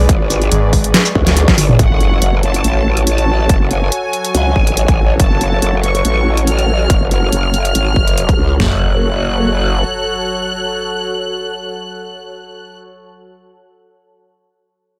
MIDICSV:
0, 0, Header, 1, 8, 480
1, 0, Start_track
1, 0, Key_signature, 3, "minor"
1, 0, Tempo, 425532
1, 102, Time_signature, 4, 2, 24, 8
1, 16912, End_track
2, 0, Start_track
2, 0, Title_t, "Violin section"
2, 0, Program_c, 0, 48
2, 2021, Note_on_c, 0, 78, 98
2, 2651, Note_off_c, 0, 78, 0
2, 2742, Note_on_c, 0, 81, 93
2, 3371, Note_off_c, 0, 81, 0
2, 3462, Note_on_c, 0, 81, 95
2, 4091, Note_off_c, 0, 81, 0
2, 4182, Note_on_c, 0, 80, 102
2, 5772, Note_off_c, 0, 80, 0
2, 5861, Note_on_c, 0, 81, 97
2, 6491, Note_off_c, 0, 81, 0
2, 6580, Note_on_c, 0, 85, 98
2, 7211, Note_off_c, 0, 85, 0
2, 7301, Note_on_c, 0, 89, 95
2, 7931, Note_off_c, 0, 89, 0
2, 8021, Note_on_c, 0, 89, 100
2, 9611, Note_off_c, 0, 89, 0
2, 9700, Note_on_c, 0, 90, 98
2, 14398, Note_off_c, 0, 90, 0
2, 16912, End_track
3, 0, Start_track
3, 0, Title_t, "Ambient pad"
3, 0, Program_c, 1, 92
3, 0, Note_on_c, 1, 68, 89
3, 0, Note_on_c, 1, 71, 74
3, 0, Note_on_c, 1, 74, 80
3, 0, Note_on_c, 1, 85, 78
3, 2021, Note_off_c, 1, 68, 0
3, 2022, Note_off_c, 1, 74, 0
3, 2025, Note_on_c, 1, 66, 85
3, 2322, Note_on_c, 1, 73, 81
3, 2388, Note_on_c, 1, 69, 78
3, 3389, Note_on_c, 1, 78, 75
3, 3430, Note_off_c, 1, 85, 0
3, 3863, Note_off_c, 1, 71, 0
3, 9686, Note_off_c, 1, 66, 0
3, 9700, Note_on_c, 1, 66, 73
3, 9702, Note_off_c, 1, 69, 0
3, 9702, Note_off_c, 1, 73, 0
3, 9702, Note_off_c, 1, 78, 0
3, 9776, Note_on_c, 1, 69, 70
3, 9851, Note_on_c, 1, 73, 73
3, 9917, Note_on_c, 1, 81, 71
3, 14398, Note_off_c, 1, 66, 0
3, 14398, Note_off_c, 1, 69, 0
3, 14398, Note_off_c, 1, 81, 0
3, 14399, Note_off_c, 1, 73, 0
3, 16912, End_track
4, 0, Start_track
4, 0, Title_t, "Analog synth pad"
4, 0, Program_c, 2, 89
4, 0, Note_on_c, 2, 56, 79
4, 0, Note_on_c, 2, 68, 70
4, 0, Note_on_c, 2, 71, 72
4, 0, Note_on_c, 2, 74, 86
4, 1976, Note_off_c, 2, 56, 0
4, 1976, Note_off_c, 2, 68, 0
4, 1976, Note_off_c, 2, 71, 0
4, 1977, Note_off_c, 2, 74, 0
4, 2022, Note_on_c, 2, 54, 75
4, 2022, Note_on_c, 2, 66, 69
4, 2022, Note_on_c, 2, 69, 66
4, 2022, Note_on_c, 2, 73, 82
4, 9657, Note_off_c, 2, 54, 0
4, 9657, Note_off_c, 2, 66, 0
4, 9657, Note_off_c, 2, 69, 0
4, 9657, Note_off_c, 2, 73, 0
4, 9699, Note_on_c, 2, 54, 73
4, 9699, Note_on_c, 2, 69, 70
4, 9699, Note_on_c, 2, 73, 83
4, 9700, Note_on_c, 2, 66, 66
4, 14398, Note_off_c, 2, 54, 0
4, 14398, Note_off_c, 2, 66, 0
4, 14398, Note_off_c, 2, 69, 0
4, 14398, Note_off_c, 2, 73, 0
4, 16912, End_track
5, 0, Start_track
5, 0, Title_t, "Detuned saw bass"
5, 0, Program_c, 3, 39
5, 582, Note_on_c, 3, 32, 96
5, 1044, Note_off_c, 3, 32, 0
5, 16912, End_track
6, 0, Start_track
6, 0, Title_t, "Wobble bass"
6, 0, Program_c, 4, 39
6, 101, Note_on_c, 4, 32, 101
6, 563, Note_off_c, 4, 32, 0
6, 1301, Note_on_c, 4, 38, 102
6, 1648, Note_off_c, 4, 38, 0
6, 1668, Note_on_c, 4, 32, 99
6, 2004, Note_off_c, 4, 32, 0
6, 2022, Note_on_c, 4, 30, 101
6, 2484, Note_off_c, 4, 30, 0
6, 2502, Note_on_c, 4, 30, 93
6, 2964, Note_off_c, 4, 30, 0
6, 2983, Note_on_c, 4, 33, 96
6, 3924, Note_off_c, 4, 33, 0
6, 3942, Note_on_c, 4, 30, 92
6, 4404, Note_off_c, 4, 30, 0
6, 4901, Note_on_c, 4, 37, 94
6, 5123, Note_off_c, 4, 37, 0
6, 5142, Note_on_c, 4, 33, 96
6, 5489, Note_off_c, 4, 33, 0
6, 5509, Note_on_c, 4, 33, 94
6, 5844, Note_off_c, 4, 33, 0
6, 5862, Note_on_c, 4, 30, 98
6, 6324, Note_off_c, 4, 30, 0
6, 6342, Note_on_c, 4, 30, 89
6, 6804, Note_off_c, 4, 30, 0
6, 6822, Note_on_c, 4, 33, 96
6, 7764, Note_off_c, 4, 33, 0
6, 7782, Note_on_c, 4, 30, 98
6, 8244, Note_off_c, 4, 30, 0
6, 8262, Note_on_c, 4, 30, 97
6, 8724, Note_off_c, 4, 30, 0
6, 8741, Note_on_c, 4, 32, 98
6, 8963, Note_off_c, 4, 32, 0
6, 8981, Note_on_c, 4, 30, 89
6, 9444, Note_off_c, 4, 30, 0
6, 9461, Note_on_c, 4, 37, 93
6, 9683, Note_off_c, 4, 37, 0
6, 9701, Note_on_c, 4, 30, 92
6, 11097, Note_off_c, 4, 30, 0
6, 16912, End_track
7, 0, Start_track
7, 0, Title_t, "Impact"
7, 0, Program_c, 5, 103
7, 2022, Note_on_c, 5, 60, 69
7, 3942, Note_off_c, 5, 60, 0
7, 9702, Note_on_c, 5, 60, 60
7, 15073, Note_off_c, 5, 60, 0
7, 16912, End_track
8, 0, Start_track
8, 0, Title_t, "Drums"
8, 101, Note_on_c, 9, 36, 123
8, 102, Note_on_c, 9, 42, 79
8, 214, Note_off_c, 9, 36, 0
8, 215, Note_off_c, 9, 42, 0
8, 342, Note_on_c, 9, 42, 57
8, 342, Note_on_c, 9, 82, 55
8, 455, Note_off_c, 9, 42, 0
8, 455, Note_off_c, 9, 82, 0
8, 469, Note_on_c, 9, 42, 36
8, 581, Note_off_c, 9, 42, 0
8, 581, Note_on_c, 9, 42, 85
8, 694, Note_off_c, 9, 42, 0
8, 821, Note_on_c, 9, 36, 64
8, 822, Note_on_c, 9, 46, 68
8, 934, Note_off_c, 9, 36, 0
8, 935, Note_off_c, 9, 46, 0
8, 949, Note_on_c, 9, 42, 65
8, 1062, Note_off_c, 9, 42, 0
8, 1062, Note_on_c, 9, 38, 118
8, 1062, Note_on_c, 9, 42, 82
8, 1175, Note_off_c, 9, 38, 0
8, 1175, Note_off_c, 9, 42, 0
8, 1189, Note_on_c, 9, 82, 76
8, 1301, Note_on_c, 9, 36, 64
8, 1302, Note_off_c, 9, 82, 0
8, 1414, Note_off_c, 9, 36, 0
8, 1429, Note_on_c, 9, 38, 36
8, 1429, Note_on_c, 9, 42, 57
8, 1541, Note_off_c, 9, 42, 0
8, 1541, Note_on_c, 9, 42, 83
8, 1542, Note_off_c, 9, 38, 0
8, 1654, Note_off_c, 9, 42, 0
8, 1668, Note_on_c, 9, 36, 106
8, 1669, Note_on_c, 9, 38, 54
8, 1669, Note_on_c, 9, 42, 39
8, 1781, Note_off_c, 9, 36, 0
8, 1781, Note_on_c, 9, 46, 101
8, 1781, Note_on_c, 9, 47, 83
8, 1782, Note_off_c, 9, 38, 0
8, 1782, Note_off_c, 9, 42, 0
8, 1894, Note_off_c, 9, 46, 0
8, 1894, Note_off_c, 9, 47, 0
8, 1908, Note_on_c, 9, 45, 85
8, 2021, Note_off_c, 9, 45, 0
8, 2021, Note_on_c, 9, 36, 122
8, 2022, Note_on_c, 9, 42, 79
8, 2134, Note_off_c, 9, 36, 0
8, 2134, Note_off_c, 9, 42, 0
8, 2262, Note_on_c, 9, 42, 53
8, 2374, Note_off_c, 9, 42, 0
8, 2502, Note_on_c, 9, 42, 79
8, 2614, Note_off_c, 9, 42, 0
8, 2742, Note_on_c, 9, 42, 52
8, 2855, Note_off_c, 9, 42, 0
8, 2869, Note_on_c, 9, 42, 60
8, 2981, Note_off_c, 9, 42, 0
8, 2981, Note_on_c, 9, 42, 77
8, 3094, Note_off_c, 9, 42, 0
8, 3349, Note_on_c, 9, 42, 53
8, 3461, Note_off_c, 9, 42, 0
8, 3461, Note_on_c, 9, 42, 81
8, 3574, Note_off_c, 9, 42, 0
8, 3589, Note_on_c, 9, 42, 37
8, 3702, Note_off_c, 9, 42, 0
8, 3941, Note_on_c, 9, 42, 80
8, 3942, Note_on_c, 9, 36, 115
8, 4054, Note_off_c, 9, 42, 0
8, 4055, Note_off_c, 9, 36, 0
8, 4181, Note_on_c, 9, 42, 52
8, 4294, Note_off_c, 9, 42, 0
8, 4421, Note_on_c, 9, 42, 75
8, 4534, Note_off_c, 9, 42, 0
8, 4662, Note_on_c, 9, 42, 51
8, 4774, Note_off_c, 9, 42, 0
8, 4788, Note_on_c, 9, 42, 59
8, 4901, Note_off_c, 9, 42, 0
8, 4902, Note_on_c, 9, 42, 80
8, 5015, Note_off_c, 9, 42, 0
8, 5142, Note_on_c, 9, 36, 60
8, 5255, Note_off_c, 9, 36, 0
8, 5269, Note_on_c, 9, 42, 54
8, 5381, Note_off_c, 9, 42, 0
8, 5381, Note_on_c, 9, 42, 78
8, 5494, Note_off_c, 9, 42, 0
8, 5509, Note_on_c, 9, 36, 102
8, 5509, Note_on_c, 9, 42, 36
8, 5621, Note_off_c, 9, 42, 0
8, 5622, Note_off_c, 9, 36, 0
8, 5861, Note_on_c, 9, 42, 78
8, 5862, Note_on_c, 9, 36, 122
8, 5974, Note_off_c, 9, 36, 0
8, 5974, Note_off_c, 9, 42, 0
8, 6102, Note_on_c, 9, 42, 53
8, 6215, Note_off_c, 9, 42, 0
8, 6342, Note_on_c, 9, 42, 79
8, 6455, Note_off_c, 9, 42, 0
8, 6582, Note_on_c, 9, 42, 51
8, 6695, Note_off_c, 9, 42, 0
8, 6709, Note_on_c, 9, 42, 57
8, 6822, Note_off_c, 9, 42, 0
8, 6822, Note_on_c, 9, 42, 75
8, 6935, Note_off_c, 9, 42, 0
8, 7189, Note_on_c, 9, 42, 52
8, 7302, Note_off_c, 9, 42, 0
8, 7302, Note_on_c, 9, 42, 77
8, 7415, Note_off_c, 9, 42, 0
8, 7429, Note_on_c, 9, 42, 35
8, 7542, Note_off_c, 9, 42, 0
8, 7782, Note_on_c, 9, 36, 116
8, 7782, Note_on_c, 9, 42, 72
8, 7894, Note_off_c, 9, 36, 0
8, 7895, Note_off_c, 9, 42, 0
8, 8022, Note_on_c, 9, 42, 49
8, 8135, Note_off_c, 9, 42, 0
8, 8262, Note_on_c, 9, 42, 72
8, 8375, Note_off_c, 9, 42, 0
8, 8502, Note_on_c, 9, 42, 49
8, 8615, Note_off_c, 9, 42, 0
8, 8630, Note_on_c, 9, 42, 56
8, 8742, Note_off_c, 9, 42, 0
8, 8742, Note_on_c, 9, 42, 74
8, 8855, Note_off_c, 9, 42, 0
8, 8981, Note_on_c, 9, 36, 62
8, 9094, Note_off_c, 9, 36, 0
8, 9109, Note_on_c, 9, 42, 49
8, 9221, Note_off_c, 9, 42, 0
8, 9222, Note_on_c, 9, 42, 75
8, 9335, Note_off_c, 9, 42, 0
8, 9348, Note_on_c, 9, 36, 101
8, 9349, Note_on_c, 9, 42, 34
8, 9461, Note_off_c, 9, 36, 0
8, 9462, Note_off_c, 9, 42, 0
8, 9700, Note_on_c, 9, 38, 101
8, 9700, Note_on_c, 9, 43, 100
8, 9813, Note_off_c, 9, 38, 0
8, 9813, Note_off_c, 9, 43, 0
8, 16912, End_track
0, 0, End_of_file